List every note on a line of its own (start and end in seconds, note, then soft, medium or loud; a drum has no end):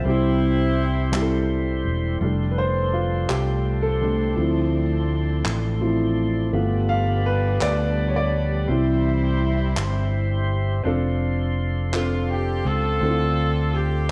0.00 0.74 G3 medium
0.00 2.18 C5 medium
0.00 2.18 E5 medium
0.05 1.87 C2 loud
0.05 1.10 C3 medium
0.05 1.47 G3 medium
0.05 0.75 C4 medium
0.05 1.47 C4 medium
0.05 0.76 E4 medium
0.05 2.19 G4 medium
0.05 0.76 G4 medium
0.05 2.19 C6 medium
0.10 1.52 E4 medium
1.12 1.82 G3 medium
1.12 1.83 C4 medium
1.12 1.83 E4 medium
1.12 1.21 G4 medium
1.12 clap medium
1.22 1.87 A4 medium
1.85 2.19 E1 medium
2.21 3.25 F1 medium
2.21 8.66 F3 medium
2.21 4.00 G3 soft
2.21 4.01 A3 soft
2.21 6.50 A3 medium
2.21 6.50 C4 medium
2.21 6.49 D4 medium
2.21 4.01 D4 soft
2.21 6.49 A4 medium
2.21 8.65 D5 soft
2.21 4.35 C6 medium
2.51 2.58 B4 medium
2.58 2.95 C5 medium
2.93 3.27 F4 medium
3.29 4.34 C2 medium
3.29 3.85 G4 medium
3.29 clap medium
3.83 4.51 A4 medium
4.01 4.34 G3 soft
4.01 4.34 A3 soft
4.01 4.34 D4 soft
4.36 5.42 D2 medium
4.36 4.85 F3 soft
4.36 4.85 C4 soft
4.36 4.85 E4 medium
4.36 6.51 C6 medium
5.45 6.50 A1 medium
5.45 clap medium
5.81 6.14 F3 soft
5.81 6.14 C4 soft
5.81 6.14 E4 medium
6.53 7.57 G1 loud
6.53 10.82 G3 medium
6.53 7.57 A3 soft
6.53 7.57 B3 soft
6.53 8.68 B3 medium
6.53 8.68 D4 medium
6.53 7.58 F4 medium
6.53 10.81 G4 medium
6.53 8.67 B5 medium
6.89 7.26 F5 medium
7.26 7.63 B4 medium
7.61 8.66 D2 medium
7.61 8.10 D5 medium
7.61 clap medium
8.08 8.15 C#5 medium
8.16 8.84 D5 medium
8.68 9.73 C2 loud
8.68 10.84 E3 medium
8.68 9.73 G3 soft
8.68 9.73 C4 soft
8.68 10.83 C4 medium
8.68 9.73 E4 medium
8.68 10.84 E4 medium
8.68 10.83 C5 medium
8.68 10.83 E5 medium
8.68 10.83 C6 medium
9.77 10.81 G1 medium
9.77 clap medium
10.84 12.62 F1 medium
10.84 11.54 C4 medium
10.84 11.55 D4 medium
10.84 11.55 F4 medium
10.84 14.11 A4 medium
10.84 11.56 A4 medium
10.84 14.11 D5 medium
10.84 14.11 F5 medium
10.84 14.11 C6 medium
11.92 12.63 C4 medium
11.92 12.63 D4 medium
11.92 12.27 F4 medium
11.92 12.64 F4 medium
11.92 12.64 A4 medium
11.92 clap medium
12.30 12.66 G4 medium
12.65 12.99 C#2 medium
12.65 13.70 C4 medium
12.65 13.71 F4 medium
12.65 13.74 A4 loud
13.00 14.11 D2 loud
13.00 14.06 D3 soft
13.00 13.71 C4 medium
13.00 13.71 D4 medium
13.00 13.09 E4 soft
13.00 13.73 A4 medium
13.09 13.75 F4 medium
13.75 14.11 G4 medium